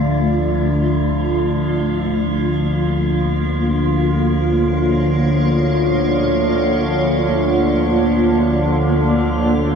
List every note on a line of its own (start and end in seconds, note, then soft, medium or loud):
0.00 9.75 D2 medium
0.00 9.75 D3 medium
0.00 9.75 F3 medium
0.00 1.64 A3 medium
0.00 9.75 F4 medium
0.00 1.65 D5 medium
1.64 9.03 A#3 medium
4.10 9.03 C#5 medium
9.03 9.75 A3 medium